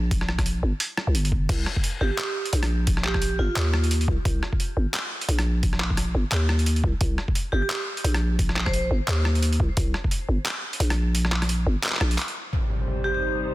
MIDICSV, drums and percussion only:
0, 0, Header, 1, 2, 480
1, 0, Start_track
1, 0, Key_signature, -3, "minor"
1, 0, Tempo, 344828
1, 160, Time_signature, 4, 2, 24, 8
1, 18852, End_track
2, 0, Start_track
2, 0, Title_t, "Drums"
2, 156, Note_on_c, 9, 36, 112
2, 156, Note_on_c, 9, 42, 79
2, 295, Note_off_c, 9, 36, 0
2, 295, Note_off_c, 9, 42, 0
2, 295, Note_on_c, 9, 37, 61
2, 398, Note_off_c, 9, 37, 0
2, 398, Note_on_c, 9, 37, 54
2, 535, Note_on_c, 9, 36, 56
2, 537, Note_off_c, 9, 37, 0
2, 538, Note_on_c, 9, 37, 61
2, 538, Note_on_c, 9, 42, 36
2, 638, Note_off_c, 9, 42, 0
2, 638, Note_on_c, 9, 42, 62
2, 674, Note_off_c, 9, 36, 0
2, 677, Note_off_c, 9, 37, 0
2, 777, Note_off_c, 9, 42, 0
2, 1115, Note_on_c, 9, 42, 76
2, 1254, Note_off_c, 9, 42, 0
2, 1357, Note_on_c, 9, 37, 81
2, 1496, Note_off_c, 9, 37, 0
2, 1598, Note_on_c, 9, 42, 66
2, 1737, Note_off_c, 9, 42, 0
2, 1739, Note_on_c, 9, 42, 36
2, 1837, Note_on_c, 9, 36, 58
2, 1878, Note_off_c, 9, 42, 0
2, 1976, Note_off_c, 9, 36, 0
2, 2076, Note_on_c, 9, 42, 83
2, 2076, Note_on_c, 9, 49, 73
2, 2077, Note_on_c, 9, 36, 117
2, 2216, Note_off_c, 9, 36, 0
2, 2216, Note_off_c, 9, 42, 0
2, 2216, Note_off_c, 9, 49, 0
2, 2316, Note_on_c, 9, 37, 54
2, 2455, Note_off_c, 9, 37, 0
2, 2456, Note_on_c, 9, 36, 56
2, 2557, Note_on_c, 9, 42, 66
2, 2595, Note_off_c, 9, 36, 0
2, 2696, Note_off_c, 9, 42, 0
2, 3038, Note_on_c, 9, 39, 113
2, 3038, Note_on_c, 9, 42, 77
2, 3178, Note_off_c, 9, 39, 0
2, 3178, Note_off_c, 9, 42, 0
2, 3417, Note_on_c, 9, 42, 35
2, 3518, Note_off_c, 9, 42, 0
2, 3518, Note_on_c, 9, 42, 68
2, 3656, Note_off_c, 9, 42, 0
2, 3656, Note_on_c, 9, 37, 84
2, 3656, Note_on_c, 9, 42, 38
2, 3795, Note_off_c, 9, 37, 0
2, 3795, Note_off_c, 9, 42, 0
2, 3995, Note_on_c, 9, 42, 82
2, 3999, Note_on_c, 9, 36, 123
2, 4134, Note_off_c, 9, 42, 0
2, 4135, Note_on_c, 9, 37, 60
2, 4139, Note_off_c, 9, 36, 0
2, 4237, Note_off_c, 9, 37, 0
2, 4237, Note_on_c, 9, 37, 51
2, 4237, Note_on_c, 9, 39, 61
2, 4375, Note_off_c, 9, 37, 0
2, 4375, Note_on_c, 9, 37, 60
2, 4376, Note_off_c, 9, 39, 0
2, 4379, Note_on_c, 9, 36, 60
2, 4477, Note_on_c, 9, 42, 64
2, 4515, Note_off_c, 9, 37, 0
2, 4518, Note_off_c, 9, 36, 0
2, 4616, Note_off_c, 9, 42, 0
2, 4959, Note_on_c, 9, 39, 116
2, 4959, Note_on_c, 9, 42, 81
2, 5098, Note_off_c, 9, 39, 0
2, 5098, Note_off_c, 9, 42, 0
2, 5200, Note_on_c, 9, 37, 79
2, 5339, Note_off_c, 9, 37, 0
2, 5341, Note_on_c, 9, 42, 38
2, 5442, Note_off_c, 9, 42, 0
2, 5442, Note_on_c, 9, 42, 69
2, 5581, Note_off_c, 9, 42, 0
2, 5581, Note_on_c, 9, 42, 36
2, 5680, Note_on_c, 9, 36, 61
2, 5720, Note_off_c, 9, 42, 0
2, 5819, Note_off_c, 9, 36, 0
2, 5920, Note_on_c, 9, 36, 126
2, 5921, Note_on_c, 9, 42, 78
2, 6059, Note_off_c, 9, 36, 0
2, 6060, Note_off_c, 9, 42, 0
2, 6162, Note_on_c, 9, 37, 51
2, 6300, Note_on_c, 9, 36, 62
2, 6301, Note_off_c, 9, 37, 0
2, 6401, Note_on_c, 9, 42, 62
2, 6439, Note_off_c, 9, 36, 0
2, 6540, Note_off_c, 9, 42, 0
2, 6877, Note_on_c, 9, 39, 118
2, 6877, Note_on_c, 9, 42, 78
2, 7017, Note_off_c, 9, 39, 0
2, 7017, Note_off_c, 9, 42, 0
2, 7259, Note_on_c, 9, 42, 37
2, 7358, Note_off_c, 9, 42, 0
2, 7358, Note_on_c, 9, 42, 69
2, 7497, Note_off_c, 9, 42, 0
2, 7497, Note_on_c, 9, 37, 78
2, 7497, Note_on_c, 9, 42, 37
2, 7636, Note_off_c, 9, 37, 0
2, 7636, Note_off_c, 9, 42, 0
2, 7836, Note_on_c, 9, 42, 78
2, 7838, Note_on_c, 9, 36, 120
2, 7975, Note_off_c, 9, 42, 0
2, 7975, Note_on_c, 9, 37, 56
2, 7977, Note_off_c, 9, 36, 0
2, 8075, Note_off_c, 9, 37, 0
2, 8075, Note_on_c, 9, 37, 50
2, 8075, Note_on_c, 9, 39, 62
2, 8214, Note_off_c, 9, 37, 0
2, 8214, Note_off_c, 9, 39, 0
2, 8217, Note_on_c, 9, 36, 61
2, 8315, Note_on_c, 9, 37, 55
2, 8315, Note_on_c, 9, 42, 62
2, 8356, Note_off_c, 9, 36, 0
2, 8454, Note_off_c, 9, 37, 0
2, 8454, Note_off_c, 9, 42, 0
2, 8795, Note_on_c, 9, 39, 115
2, 8795, Note_on_c, 9, 42, 76
2, 8935, Note_off_c, 9, 39, 0
2, 8935, Note_off_c, 9, 42, 0
2, 9035, Note_on_c, 9, 37, 74
2, 9174, Note_off_c, 9, 37, 0
2, 9174, Note_on_c, 9, 42, 36
2, 9275, Note_off_c, 9, 42, 0
2, 9275, Note_on_c, 9, 42, 64
2, 9414, Note_off_c, 9, 42, 0
2, 9414, Note_on_c, 9, 42, 36
2, 9516, Note_on_c, 9, 36, 60
2, 9553, Note_off_c, 9, 42, 0
2, 9655, Note_off_c, 9, 36, 0
2, 9753, Note_on_c, 9, 42, 76
2, 9756, Note_on_c, 9, 36, 115
2, 9892, Note_off_c, 9, 42, 0
2, 9895, Note_off_c, 9, 36, 0
2, 9995, Note_on_c, 9, 37, 49
2, 10135, Note_off_c, 9, 37, 0
2, 10136, Note_on_c, 9, 36, 58
2, 10236, Note_on_c, 9, 42, 59
2, 10275, Note_off_c, 9, 36, 0
2, 10375, Note_off_c, 9, 42, 0
2, 10716, Note_on_c, 9, 39, 112
2, 10716, Note_on_c, 9, 42, 73
2, 10856, Note_off_c, 9, 39, 0
2, 10856, Note_off_c, 9, 42, 0
2, 11097, Note_on_c, 9, 42, 33
2, 11199, Note_off_c, 9, 42, 0
2, 11199, Note_on_c, 9, 42, 64
2, 11337, Note_off_c, 9, 42, 0
2, 11337, Note_on_c, 9, 37, 76
2, 11337, Note_on_c, 9, 42, 35
2, 11477, Note_off_c, 9, 37, 0
2, 11477, Note_off_c, 9, 42, 0
2, 11678, Note_on_c, 9, 36, 111
2, 11679, Note_on_c, 9, 42, 74
2, 11817, Note_off_c, 9, 36, 0
2, 11818, Note_off_c, 9, 42, 0
2, 11820, Note_on_c, 9, 37, 60
2, 11920, Note_off_c, 9, 37, 0
2, 11920, Note_on_c, 9, 37, 52
2, 11920, Note_on_c, 9, 39, 57
2, 12059, Note_off_c, 9, 37, 0
2, 12059, Note_off_c, 9, 39, 0
2, 12059, Note_on_c, 9, 36, 57
2, 12059, Note_on_c, 9, 37, 61
2, 12159, Note_on_c, 9, 42, 58
2, 12198, Note_off_c, 9, 36, 0
2, 12198, Note_off_c, 9, 37, 0
2, 12298, Note_off_c, 9, 42, 0
2, 12638, Note_on_c, 9, 39, 109
2, 12638, Note_on_c, 9, 42, 73
2, 12777, Note_off_c, 9, 39, 0
2, 12777, Note_off_c, 9, 42, 0
2, 12878, Note_on_c, 9, 37, 77
2, 13017, Note_off_c, 9, 37, 0
2, 13020, Note_on_c, 9, 42, 33
2, 13120, Note_off_c, 9, 42, 0
2, 13120, Note_on_c, 9, 42, 64
2, 13259, Note_off_c, 9, 42, 0
2, 13259, Note_on_c, 9, 42, 36
2, 13360, Note_on_c, 9, 36, 56
2, 13398, Note_off_c, 9, 42, 0
2, 13500, Note_off_c, 9, 36, 0
2, 13598, Note_on_c, 9, 42, 79
2, 13601, Note_on_c, 9, 36, 111
2, 13737, Note_off_c, 9, 42, 0
2, 13741, Note_off_c, 9, 36, 0
2, 13840, Note_on_c, 9, 37, 54
2, 13979, Note_off_c, 9, 37, 0
2, 13980, Note_on_c, 9, 36, 56
2, 14076, Note_on_c, 9, 42, 61
2, 14120, Note_off_c, 9, 36, 0
2, 14216, Note_off_c, 9, 42, 0
2, 14557, Note_on_c, 9, 39, 107
2, 14557, Note_on_c, 9, 42, 75
2, 14696, Note_off_c, 9, 39, 0
2, 14696, Note_off_c, 9, 42, 0
2, 14938, Note_on_c, 9, 42, 35
2, 15036, Note_off_c, 9, 42, 0
2, 15036, Note_on_c, 9, 42, 65
2, 15175, Note_off_c, 9, 42, 0
2, 15178, Note_on_c, 9, 37, 80
2, 15178, Note_on_c, 9, 42, 36
2, 15317, Note_off_c, 9, 37, 0
2, 15317, Note_off_c, 9, 42, 0
2, 15516, Note_on_c, 9, 42, 83
2, 15656, Note_off_c, 9, 42, 0
2, 15656, Note_on_c, 9, 37, 62
2, 15758, Note_off_c, 9, 37, 0
2, 15758, Note_on_c, 9, 37, 55
2, 15758, Note_on_c, 9, 39, 59
2, 15896, Note_off_c, 9, 37, 0
2, 15896, Note_on_c, 9, 37, 63
2, 15896, Note_on_c, 9, 42, 37
2, 15897, Note_off_c, 9, 39, 0
2, 15995, Note_off_c, 9, 42, 0
2, 15995, Note_on_c, 9, 42, 65
2, 16036, Note_off_c, 9, 37, 0
2, 16134, Note_off_c, 9, 42, 0
2, 16475, Note_on_c, 9, 39, 107
2, 16475, Note_on_c, 9, 42, 78
2, 16515, Note_off_c, 9, 39, 0
2, 16515, Note_on_c, 9, 39, 86
2, 16557, Note_off_c, 9, 39, 0
2, 16557, Note_on_c, 9, 39, 73
2, 16596, Note_off_c, 9, 39, 0
2, 16596, Note_on_c, 9, 39, 59
2, 16614, Note_off_c, 9, 42, 0
2, 16633, Note_off_c, 9, 39, 0
2, 16633, Note_on_c, 9, 39, 49
2, 16660, Note_off_c, 9, 39, 0
2, 16660, Note_on_c, 9, 39, 41
2, 16689, Note_off_c, 9, 39, 0
2, 16689, Note_on_c, 9, 39, 33
2, 16717, Note_on_c, 9, 37, 83
2, 16828, Note_off_c, 9, 39, 0
2, 16856, Note_off_c, 9, 37, 0
2, 16858, Note_on_c, 9, 42, 37
2, 16956, Note_off_c, 9, 42, 0
2, 16956, Note_on_c, 9, 39, 59
2, 16956, Note_on_c, 9, 42, 66
2, 17094, Note_off_c, 9, 42, 0
2, 17094, Note_on_c, 9, 42, 36
2, 17096, Note_off_c, 9, 39, 0
2, 17233, Note_off_c, 9, 42, 0
2, 17437, Note_on_c, 9, 42, 78
2, 17576, Note_off_c, 9, 42, 0
2, 17578, Note_on_c, 9, 46, 60
2, 17677, Note_on_c, 9, 42, 62
2, 17717, Note_off_c, 9, 46, 0
2, 17816, Note_off_c, 9, 42, 0
2, 17817, Note_on_c, 9, 46, 61
2, 17917, Note_on_c, 9, 42, 72
2, 17956, Note_off_c, 9, 46, 0
2, 18056, Note_off_c, 9, 42, 0
2, 18160, Note_on_c, 9, 42, 59
2, 18207, Note_off_c, 9, 42, 0
2, 18207, Note_on_c, 9, 42, 49
2, 18240, Note_off_c, 9, 42, 0
2, 18240, Note_on_c, 9, 42, 38
2, 18297, Note_off_c, 9, 42, 0
2, 18297, Note_on_c, 9, 42, 32
2, 18319, Note_off_c, 9, 42, 0
2, 18319, Note_on_c, 9, 42, 26
2, 18366, Note_off_c, 9, 42, 0
2, 18366, Note_on_c, 9, 42, 21
2, 18397, Note_off_c, 9, 42, 0
2, 18397, Note_on_c, 9, 42, 74
2, 18537, Note_off_c, 9, 42, 0
2, 18779, Note_on_c, 9, 46, 33
2, 18852, Note_off_c, 9, 46, 0
2, 18852, End_track
0, 0, End_of_file